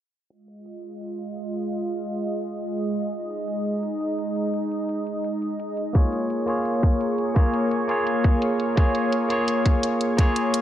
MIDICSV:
0, 0, Header, 1, 4, 480
1, 0, Start_track
1, 0, Key_signature, -4, "minor"
1, 0, Tempo, 352941
1, 415, Time_signature, 4, 2, 24, 8
1, 14435, End_track
2, 0, Start_track
2, 0, Title_t, "Tine electric piano"
2, 0, Program_c, 0, 4
2, 8067, Note_on_c, 0, 58, 75
2, 8085, Note_on_c, 0, 65, 75
2, 8098, Note_on_c, 0, 68, 73
2, 8114, Note_on_c, 0, 73, 89
2, 8368, Control_c, 0, 64, 127
2, 8768, Note_off_c, 0, 58, 0
2, 8782, Note_off_c, 0, 65, 0
2, 8785, Note_on_c, 0, 58, 76
2, 8789, Note_off_c, 0, 68, 0
2, 8797, Note_off_c, 0, 73, 0
2, 8802, Note_on_c, 0, 65, 71
2, 8817, Note_on_c, 0, 68, 70
2, 8834, Note_on_c, 0, 73, 88
2, 9972, Note_off_c, 0, 58, 0
2, 9981, Note_off_c, 0, 65, 0
2, 9989, Note_off_c, 0, 68, 0
2, 9990, Note_on_c, 0, 58, 80
2, 9997, Note_off_c, 0, 73, 0
2, 10003, Note_on_c, 0, 65, 75
2, 10020, Note_on_c, 0, 68, 71
2, 10037, Note_on_c, 0, 73, 89
2, 10695, Note_off_c, 0, 58, 0
2, 10702, Note_off_c, 0, 65, 0
2, 10710, Note_off_c, 0, 68, 0
2, 10711, Note_on_c, 0, 58, 83
2, 10718, Note_off_c, 0, 73, 0
2, 10728, Note_on_c, 0, 65, 77
2, 10744, Note_on_c, 0, 68, 74
2, 10761, Note_on_c, 0, 73, 90
2, 11892, Note_off_c, 0, 58, 0
2, 11904, Note_off_c, 0, 65, 0
2, 11908, Note_on_c, 0, 58, 83
2, 11912, Note_off_c, 0, 68, 0
2, 11921, Note_off_c, 0, 73, 0
2, 11924, Note_on_c, 0, 65, 75
2, 11941, Note_on_c, 0, 68, 72
2, 11955, Note_on_c, 0, 73, 89
2, 12611, Note_off_c, 0, 58, 0
2, 12622, Note_off_c, 0, 65, 0
2, 12627, Note_on_c, 0, 58, 83
2, 12631, Note_off_c, 0, 68, 0
2, 12638, Note_off_c, 0, 73, 0
2, 12643, Note_on_c, 0, 65, 74
2, 12659, Note_on_c, 0, 68, 78
2, 12675, Note_on_c, 0, 73, 91
2, 13814, Note_off_c, 0, 58, 0
2, 13822, Note_off_c, 0, 65, 0
2, 13828, Note_on_c, 0, 58, 83
2, 13830, Note_off_c, 0, 68, 0
2, 13838, Note_off_c, 0, 73, 0
2, 13844, Note_on_c, 0, 65, 74
2, 13861, Note_on_c, 0, 68, 79
2, 13876, Note_on_c, 0, 73, 95
2, 14435, Note_off_c, 0, 58, 0
2, 14435, Note_off_c, 0, 65, 0
2, 14435, Note_off_c, 0, 68, 0
2, 14435, Note_off_c, 0, 73, 0
2, 14435, End_track
3, 0, Start_track
3, 0, Title_t, "Analog synth pad"
3, 0, Program_c, 1, 89
3, 411, Note_on_c, 1, 56, 76
3, 412, Note_on_c, 1, 65, 69
3, 412, Note_on_c, 1, 75, 88
3, 4215, Note_off_c, 1, 65, 0
3, 4258, Note_on_c, 1, 63, 73
3, 8038, Note_off_c, 1, 56, 0
3, 8038, Note_off_c, 1, 75, 0
3, 8058, Note_off_c, 1, 63, 0
3, 8089, Note_on_c, 1, 68, 72
3, 8090, Note_on_c, 1, 58, 80
3, 8092, Note_on_c, 1, 73, 91
3, 14435, Note_off_c, 1, 58, 0
3, 14435, Note_off_c, 1, 68, 0
3, 14435, Note_off_c, 1, 73, 0
3, 14435, End_track
4, 0, Start_track
4, 0, Title_t, "Drums"
4, 413, Note_on_c, 9, 42, 93
4, 549, Note_off_c, 9, 42, 0
4, 653, Note_on_c, 9, 42, 68
4, 789, Note_off_c, 9, 42, 0
4, 893, Note_on_c, 9, 42, 94
4, 1029, Note_off_c, 9, 42, 0
4, 1134, Note_on_c, 9, 42, 70
4, 1270, Note_off_c, 9, 42, 0
4, 1374, Note_on_c, 9, 42, 94
4, 1510, Note_off_c, 9, 42, 0
4, 1614, Note_on_c, 9, 42, 64
4, 1750, Note_off_c, 9, 42, 0
4, 1855, Note_on_c, 9, 42, 92
4, 1991, Note_off_c, 9, 42, 0
4, 2096, Note_on_c, 9, 42, 64
4, 2232, Note_off_c, 9, 42, 0
4, 2335, Note_on_c, 9, 42, 88
4, 2471, Note_off_c, 9, 42, 0
4, 2574, Note_on_c, 9, 42, 67
4, 2710, Note_off_c, 9, 42, 0
4, 2814, Note_on_c, 9, 42, 92
4, 2950, Note_off_c, 9, 42, 0
4, 3056, Note_on_c, 9, 42, 68
4, 3192, Note_off_c, 9, 42, 0
4, 3295, Note_on_c, 9, 42, 98
4, 3431, Note_off_c, 9, 42, 0
4, 3534, Note_on_c, 9, 42, 69
4, 3670, Note_off_c, 9, 42, 0
4, 3773, Note_on_c, 9, 42, 89
4, 3909, Note_off_c, 9, 42, 0
4, 4015, Note_on_c, 9, 42, 66
4, 4151, Note_off_c, 9, 42, 0
4, 4253, Note_on_c, 9, 42, 93
4, 4389, Note_off_c, 9, 42, 0
4, 4493, Note_on_c, 9, 42, 67
4, 4629, Note_off_c, 9, 42, 0
4, 4732, Note_on_c, 9, 42, 94
4, 4868, Note_off_c, 9, 42, 0
4, 4973, Note_on_c, 9, 42, 64
4, 5109, Note_off_c, 9, 42, 0
4, 5211, Note_on_c, 9, 42, 96
4, 5347, Note_off_c, 9, 42, 0
4, 5451, Note_on_c, 9, 42, 67
4, 5587, Note_off_c, 9, 42, 0
4, 5693, Note_on_c, 9, 42, 94
4, 5829, Note_off_c, 9, 42, 0
4, 5932, Note_on_c, 9, 42, 65
4, 6068, Note_off_c, 9, 42, 0
4, 6172, Note_on_c, 9, 42, 88
4, 6308, Note_off_c, 9, 42, 0
4, 6413, Note_on_c, 9, 42, 64
4, 6549, Note_off_c, 9, 42, 0
4, 6652, Note_on_c, 9, 42, 87
4, 6788, Note_off_c, 9, 42, 0
4, 6892, Note_on_c, 9, 42, 64
4, 7028, Note_off_c, 9, 42, 0
4, 7132, Note_on_c, 9, 42, 85
4, 7268, Note_off_c, 9, 42, 0
4, 7372, Note_on_c, 9, 42, 64
4, 7508, Note_off_c, 9, 42, 0
4, 7611, Note_on_c, 9, 42, 88
4, 7747, Note_off_c, 9, 42, 0
4, 7849, Note_on_c, 9, 42, 61
4, 7985, Note_off_c, 9, 42, 0
4, 8090, Note_on_c, 9, 42, 83
4, 8092, Note_on_c, 9, 36, 112
4, 8226, Note_off_c, 9, 42, 0
4, 8228, Note_off_c, 9, 36, 0
4, 8330, Note_on_c, 9, 42, 59
4, 8466, Note_off_c, 9, 42, 0
4, 8569, Note_on_c, 9, 42, 84
4, 8705, Note_off_c, 9, 42, 0
4, 8809, Note_on_c, 9, 42, 61
4, 8945, Note_off_c, 9, 42, 0
4, 9049, Note_on_c, 9, 42, 89
4, 9185, Note_off_c, 9, 42, 0
4, 9290, Note_on_c, 9, 42, 59
4, 9291, Note_on_c, 9, 36, 92
4, 9426, Note_off_c, 9, 42, 0
4, 9427, Note_off_c, 9, 36, 0
4, 9530, Note_on_c, 9, 42, 83
4, 9666, Note_off_c, 9, 42, 0
4, 9769, Note_on_c, 9, 42, 61
4, 9905, Note_off_c, 9, 42, 0
4, 10010, Note_on_c, 9, 42, 84
4, 10011, Note_on_c, 9, 36, 113
4, 10146, Note_off_c, 9, 42, 0
4, 10147, Note_off_c, 9, 36, 0
4, 10249, Note_on_c, 9, 42, 61
4, 10385, Note_off_c, 9, 42, 0
4, 10490, Note_on_c, 9, 42, 88
4, 10626, Note_off_c, 9, 42, 0
4, 10731, Note_on_c, 9, 42, 63
4, 10867, Note_off_c, 9, 42, 0
4, 10971, Note_on_c, 9, 42, 90
4, 11107, Note_off_c, 9, 42, 0
4, 11210, Note_on_c, 9, 42, 62
4, 11212, Note_on_c, 9, 36, 97
4, 11346, Note_off_c, 9, 42, 0
4, 11348, Note_off_c, 9, 36, 0
4, 11451, Note_on_c, 9, 42, 84
4, 11587, Note_off_c, 9, 42, 0
4, 11691, Note_on_c, 9, 42, 61
4, 11827, Note_off_c, 9, 42, 0
4, 11931, Note_on_c, 9, 42, 88
4, 11932, Note_on_c, 9, 36, 112
4, 12067, Note_off_c, 9, 42, 0
4, 12068, Note_off_c, 9, 36, 0
4, 12169, Note_on_c, 9, 42, 63
4, 12305, Note_off_c, 9, 42, 0
4, 12409, Note_on_c, 9, 42, 88
4, 12545, Note_off_c, 9, 42, 0
4, 12650, Note_on_c, 9, 42, 65
4, 12786, Note_off_c, 9, 42, 0
4, 12890, Note_on_c, 9, 42, 90
4, 13026, Note_off_c, 9, 42, 0
4, 13132, Note_on_c, 9, 36, 95
4, 13132, Note_on_c, 9, 42, 64
4, 13268, Note_off_c, 9, 36, 0
4, 13268, Note_off_c, 9, 42, 0
4, 13371, Note_on_c, 9, 42, 88
4, 13507, Note_off_c, 9, 42, 0
4, 13611, Note_on_c, 9, 42, 65
4, 13747, Note_off_c, 9, 42, 0
4, 13851, Note_on_c, 9, 36, 116
4, 13852, Note_on_c, 9, 42, 91
4, 13987, Note_off_c, 9, 36, 0
4, 13988, Note_off_c, 9, 42, 0
4, 14091, Note_on_c, 9, 42, 67
4, 14227, Note_off_c, 9, 42, 0
4, 14332, Note_on_c, 9, 42, 94
4, 14435, Note_off_c, 9, 42, 0
4, 14435, End_track
0, 0, End_of_file